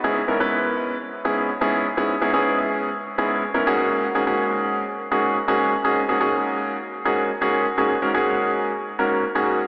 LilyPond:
\new Staff \with { instrumentName = "Grand piano" } { \time 4/4 \key fis \mixolydian \tempo 4 = 124 <gis, b cis' e' gis'>16 r16 <gis, b cis' e' ais'>16 <gis, b cis' e' b'>4 r8. <gis, b cis' e' gis'>8 r16 <gis, b cis' e' gis'>8 r16 | <gis, b cis' e' gis'>16 r16 <gis, b cis' e' gis'>16 <gis, b cis' e' gis'>4 r8. <gis, b cis' e' gis'>8 r16 <gis, b cis' e' ais'>16 <gis, ais cis' fis' gis'>8~ | <gis, ais cis' fis' gis'>16 r16 <gis, ais cis' fis' gis'>16 <gis, ais cis' fis' gis'>4 r8. <gis, ais cis' fis' gis'>8 r16 <gis, ais cis' fis' gis'>8 r16 | <gis, ais cis' fis' gis'>16 r16 <gis, ais cis' fis' gis'>16 <gis, ais cis' fis' gis'>4 r8. <gis, ais cis' fis' gis'>8 r16 <gis, ais cis' fis' gis'>8 r16 |
<gis, ais cis' fis' gis'>16 r16 <gis, ais cis' fis' ais'>16 <gis, ais cis' fis' gis'>4 r8. <gis, ais cis' fis' ais'>8 r16 <gis, ais cis' fis' gis'>8 r16 | }